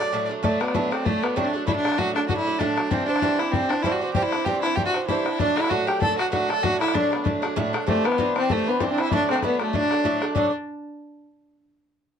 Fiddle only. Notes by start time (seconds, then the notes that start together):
Already playing: D5
0.44 A3
0.61 B3
0.93 C4
1.05 A3
1.23 B3
1.36 C4
1.45 D4
1.67 E4
1.76 D4
1.98 F#4
2.15 D4
2.29 F#4
2.37 E4
2.59 D4
2.91 C4
3.07 D4
3.39 E4
3.52 C4
3.69 D4
3.83 E4
3.92 F#4
4.14 G4
4.22 E4
4.45 G4
4.62 E4
4.76 G4
4.85 F#4
5.08 E4
5.39 D4
5.56 E4
5.70 F#4
5.87 G4
6.01 A4
6.18 F#4
6.32 F#4
6.50 A4
6.63 F#4
6.81 E4
6.94 D4
7.88 A3
8.06 B3
8.38 C4
8.52 A3
8.69 B3
8.80 C4 D4
8.91 D4
9.00 E4
9.14 D4
9.31 C4
9.45 B3
9.61 A3
9.75 D4
10.36 D4